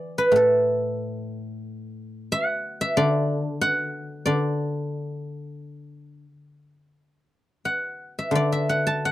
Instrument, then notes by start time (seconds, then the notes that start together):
guzheng
Already playing: E3 D5 E5
0.18 B4
0.32 A2
0.36 A4
2.32 F#5
2.81 E5
2.97 D3 D5
3.61 F#5
4.26 D3 D5
7.65 F#5
8.19 E5
8.31 D3
8.35 D5
8.52 E5
8.69 F#5
8.87 A5
9.05 F#5